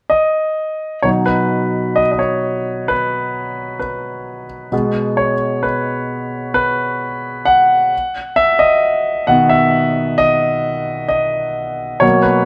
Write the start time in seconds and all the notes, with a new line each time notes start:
0.10 D#5
1.02 B2 F#3 D#4 C#5
1.26 B4
1.96 D#5
2.12 D#5
2.19 C#5
2.88 B4
3.79 B4
4.72 B2 G#3 B3
5.17 C#5
5.63 B4
6.54 B4
7.45 F#5
8.36 E5
8.59 D#5
9.27 B2 D#3 B3 F#5
9.49 E5
10.18 D#5
11.08 D#5
12.00 B2 F#3 A#3 C#5
12.22 B4